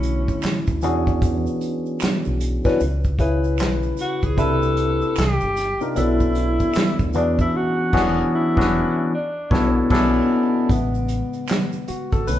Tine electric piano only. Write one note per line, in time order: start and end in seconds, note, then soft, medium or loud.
0.00 0.66 B2 medium
0.00 0.67 D3 medium
0.00 0.67 A3 medium
0.00 0.67 C#4 medium
0.00 0.67 E4 medium
0.82 2.16 E3 medium
0.82 2.16 B3 medium
0.82 2.16 C#4 medium
0.82 2.16 D4 medium
0.82 2.17 F#4 medium
0.82 2.17 G#4 medium
2.65 2.80 E3 medium
2.65 2.80 B3 medium
2.65 2.80 C#4 medium
2.65 2.80 D4 medium
2.65 2.80 F#4 medium
2.65 2.81 B4 medium
3.19 4.22 C#3 medium
3.19 4.22 C#4 medium
3.19 4.22 E4 medium
3.19 4.22 G#4 medium
3.19 4.23 B4 loud
4.37 5.16 C3 medium
4.37 5.17 C4 medium
4.37 5.17 D4 medium
4.37 5.17 E4 medium
4.37 5.17 B4 loud
5.81 5.96 C3 medium
5.81 5.96 C4 medium
5.81 5.95 D4 medium
5.81 5.96 D#4 medium
5.81 5.96 F4 medium
5.81 5.96 A#4 medium
5.95 6.98 B2 medium
5.95 6.98 B3 medium
5.95 6.98 C#4 medium
5.95 6.98 D4 medium
5.95 6.98 E4 medium
5.95 6.99 A4 medium
7.14 7.54 E3 medium
7.14 7.54 B3 medium
7.14 7.54 C#4 medium
7.14 7.54 D4 medium
7.14 7.54 F#4 medium
7.14 7.54 G#4 medium
7.93 8.22 E3 medium
7.93 8.22 B3 medium
7.93 8.22 C#4 loud
7.93 8.22 D4 medium
7.93 8.22 F#4 loud
7.93 8.22 G#4 medium
8.57 8.82 E3 medium
8.57 8.82 B3 medium
8.57 8.82 C#4 medium
8.57 8.83 D4 medium
8.57 8.83 F#4 medium
8.57 8.83 B4 medium
9.50 9.79 B2 medium
9.50 9.79 B3 medium
9.50 9.80 D4 loud
9.50 9.80 E4 medium
9.50 9.80 A4 medium
9.50 9.79 C#5 medium
9.90 10.19 B2 loud
9.90 10.19 B3 loud
9.90 10.19 C#4 loud
9.90 10.19 D4 loud
9.90 10.20 E4 medium
9.90 10.20 A4 medium
10.69 11.25 C#3 soft
10.69 11.26 G#3 soft
10.69 11.26 B3 medium
11.88 12.11 F#4 medium
12.13 12.26 A4 medium
12.27 12.39 D3 medium
12.27 12.39 A3 soft
12.27 12.39 C#4 medium
12.27 12.39 B4 medium